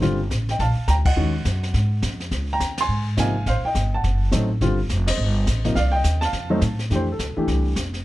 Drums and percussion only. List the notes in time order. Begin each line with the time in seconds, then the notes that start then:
0.02 brush sweep, kick, snare
0.31 kick, snare, hi-hat pedal
0.49 snare
0.59 brush sweep, kick, snare
0.88 kick, snare, hi-hat pedal
1.05 kick, crash
1.16 brush sweep
1.45 kick, snare, hi-hat pedal
1.63 snare
1.74 brush sweep, kick, snare
2.02 kick, snare, hi-hat pedal
2.20 snare
2.31 brush sweep, kick, snare
2.60 kick, snare, hi-hat pedal
2.78 snare, ride
2.89 brush sweep
3.17 kick, snare, hi-hat pedal
3.46 brush sweep, kick, snare
3.75 kick, snare, hi-hat pedal
4.04 brush sweep, kick, snare
4.32 kick, snare, hi-hat pedal
4.61 brush sweep, kick, snare
4.89 kick, snare, hi-hat pedal
5.07 snare, ride
5.18 brush sweep
5.47 kick, snare, hi-hat pedal
5.65 snare
5.76 brush sweep, kick, snare
6.04 kick, snare, hi-hat pedal
6.22 snare
6.33 brush sweep, kick, snare
6.61 kick, snare, hi-hat pedal
6.79 snare
6.90 brush sweep, kick, snare
7.19 kick, snare, hi-hat pedal
7.48 brush sweep, kick, snare
7.76 kick, snare, hi-hat pedal
7.93 snare